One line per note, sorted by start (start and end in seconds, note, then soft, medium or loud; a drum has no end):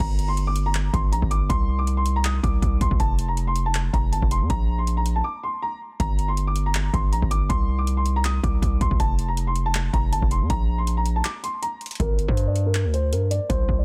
0.00 0.90 G1 loud
0.00 0.27 A#5 loud
0.00 kick loud
0.19 closed hi-hat medium
0.28 0.43 C6 medium
0.37 closed hi-hat medium
0.47 0.62 D6 medium
0.56 closed hi-hat medium
0.66 0.92 A#5 medium
0.75 clap loud
0.75 closed hi-hat medium
0.93 1.14 G1 loud
0.93 1.08 C6 medium
0.93 kick loud
0.93 closed hi-hat medium
1.12 1.22 A#1 loud
1.12 1.27 A#5 medium
1.12 closed hi-hat medium
1.22 1.49 G1 loud
1.22 kick loud
1.31 1.46 D6 medium
1.31 closed hi-hat medium
1.49 2.40 C2 loud
1.49 1.77 C6 loud
1.49 kick loud
1.49 closed hi-hat medium
1.79 1.93 D6 medium
1.87 closed hi-hat medium
1.97 2.12 C6 medium
2.06 closed hi-hat medium
2.16 2.23 A#5 medium
2.25 2.39 D#6 medium
2.25 clap loud
2.25 closed hi-hat medium
2.43 2.62 C2 loud
2.43 2.79 D6 medium
2.43 kick loud
2.43 closed hi-hat medium
2.62 2.80 C2 loud
2.62 kick loud
2.62 closed hi-hat medium
2.81 2.91 C2 loud
2.81 2.96 C6 medium
2.81 kick medium
2.81 closed hi-hat medium
2.91 2.99 C2 loud
2.91 kick loud
3.00 3.90 F1 loud
3.00 3.27 A5 loud
3.00 kick loud
3.00 closed hi-hat medium
3.19 closed hi-hat medium
3.28 3.43 A#5 medium
3.37 closed hi-hat medium
3.47 3.62 C6 medium
3.56 closed hi-hat medium
3.66 3.92 A5 medium
3.75 clap loud
3.75 closed hi-hat medium
3.93 4.14 F1 loud
3.93 4.08 A#5 medium
3.93 kick loud
3.93 closed hi-hat medium
4.12 4.22 G1 loud
4.12 4.27 A5 medium
4.12 closed hi-hat medium
4.22 4.42 F1 loud
4.22 kick loud
4.31 4.46 C6 medium
4.31 closed hi-hat medium
4.41 4.49 F2 loud
4.50 5.22 A#1 loud
4.50 4.77 A#5 loud
4.50 kick loud
4.50 closed hi-hat medium
4.79 4.93 C6 medium
4.87 closed hi-hat medium
4.97 5.12 A#5 medium
5.06 closed hi-hat medium
5.16 5.23 A5 medium
5.24 5.39 D6 medium
5.43 5.58 C6 medium
5.62 5.77 A#5 medium
6.00 6.90 G1 loud
6.00 6.27 A#5 loud
6.00 kick loud
6.00 closed hi-hat medium
6.19 closed hi-hat medium
6.28 6.43 C6 medium
6.37 closed hi-hat medium
6.47 6.62 D6 medium
6.56 closed hi-hat medium
6.66 6.92 A#5 medium
6.75 clap loud
6.75 closed hi-hat medium
6.93 7.14 G1 loud
6.93 7.08 C6 medium
6.93 kick loud
6.93 closed hi-hat medium
7.12 7.22 A#1 loud
7.12 7.27 A#5 medium
7.12 closed hi-hat medium
7.22 7.49 G1 loud
7.22 kick loud
7.31 7.46 D6 medium
7.31 closed hi-hat medium
7.49 8.40 C2 loud
7.49 7.77 C6 loud
7.49 kick loud
7.49 closed hi-hat medium
7.79 7.93 D6 medium
7.87 closed hi-hat medium
7.97 8.12 C6 medium
8.06 closed hi-hat medium
8.16 8.23 A#5 medium
8.25 8.39 D#6 medium
8.25 clap loud
8.25 closed hi-hat medium
8.43 8.61 C2 loud
8.43 8.79 D6 medium
8.43 kick loud
8.43 closed hi-hat medium
8.62 8.80 C2 loud
8.62 kick loud
8.62 closed hi-hat medium
8.81 8.91 C2 loud
8.81 8.96 C6 medium
8.81 kick medium
8.81 closed hi-hat medium
8.91 8.99 C2 loud
8.91 kick loud
9.00 9.90 F1 loud
9.00 9.27 A5 loud
9.00 kick loud
9.00 closed hi-hat medium
9.19 closed hi-hat medium
9.28 9.43 A#5 medium
9.37 closed hi-hat medium
9.47 9.62 C6 medium
9.56 closed hi-hat medium
9.66 9.92 A5 medium
9.75 clap loud
9.75 closed hi-hat medium
9.93 10.14 F1 loud
9.93 10.08 A#5 medium
9.93 kick medium
9.93 closed hi-hat medium
10.12 10.22 G1 loud
10.12 10.27 A5 medium
10.12 closed hi-hat medium
10.22 10.43 F1 loud
10.22 kick loud
10.31 10.46 C6 medium
10.31 closed hi-hat medium
10.41 10.49 F2 loud
10.50 11.22 A#1 loud
10.50 10.77 A#5 loud
10.50 kick loud
10.50 closed hi-hat medium
10.78 10.93 C6 medium
10.87 closed hi-hat medium
10.97 11.12 A#5 medium
11.06 closed hi-hat medium
11.16 11.23 A5 medium
11.24 11.39 D6 medium
11.24 clap loud
11.24 closed hi-hat medium
11.43 11.58 C6 medium
11.43 closed hi-hat medium
11.62 11.77 A#5 medium
11.62 closed hi-hat medium
11.81 closed hi-hat soft
11.86 closed hi-hat medium
11.91 closed hi-hat medium
11.95 closed hi-hat medium
12.00 12.27 G1 loud
12.00 12.27 A#4 loud
12.00 kick loud
12.00 closed hi-hat medium
12.19 closed hi-hat medium
12.28 12.86 G2 loud
12.28 12.43 C5 medium
12.28 kick medium
12.37 closed hi-hat medium
12.47 12.62 D5 medium
12.56 closed hi-hat medium
12.66 12.92 A#4 medium
12.75 clap loud
12.75 closed hi-hat medium
12.85 13.14 D2 loud
12.94 13.08 C5 medium
12.94 closed hi-hat medium
13.12 13.40 G2 loud
13.12 13.27 A#4 medium
13.12 closed hi-hat medium
13.31 13.46 D5 medium
13.31 closed hi-hat medium
13.49 13.68 C2 loud
13.49 13.77 C5 loud
13.49 kick loud
13.49 closed hi-hat medium
13.69 13.85 C2 loud
13.69 kick loud
13.79 13.85 D5 medium